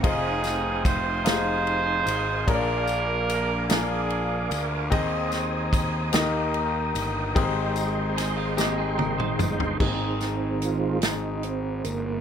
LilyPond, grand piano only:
<<
  \new Staff \with { instrumentName = "Grand piano" } { \time 6/8 \key aes \major \tempo 4. = 49 <ees' f' aes' c'' ees''>4 r8 <ees' f' g' aes' c'' f''>4 r8 | <d' f' aes' bes' des'' d''>4 r8 <d' f' aes' bes' f''>4 r8 | <c' ees' aes' c'' ees''>4 r8 <bes ees' g' bes' ees''>4 r8 | <c' ees' g' aes' bes' c''>4 r8 <c' ees' g' aes' ees''>4 r8 |
<aes bes c' ees' aes'>4 r8 <aes c' ees' aes'>4 r8 | }
  \new Staff \with { instrumentName = "Grand piano" } { \clef bass \time 6/8 \key aes \major r2. | bes,4. r4. | ees4. ees4. | aes,4. r4. |
aes,4. r4. | }
>>